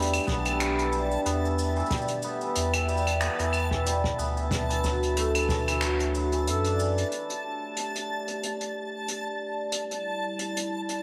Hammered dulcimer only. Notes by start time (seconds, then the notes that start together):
Already playing: E3 G3 A3 B3 D4
0.27 B3
0.46 E3
0.78 E3
0.92 G3
1.25 B3
1.44 E3
1.76 E3
1.91 G3
2.24 B3
2.42 E3
2.74 E3
2.88 G3
3.21 B3
3.40 E3
3.71 E3
3.86 G3
4.18 B3
4.36 E3
4.69 E3
4.84 F#3
5.17 A3
5.35 E3
5.68 E3
5.82 F#3
6.15 F#3
6.33 E3
6.48 A4
6.66 D4
6.80 E3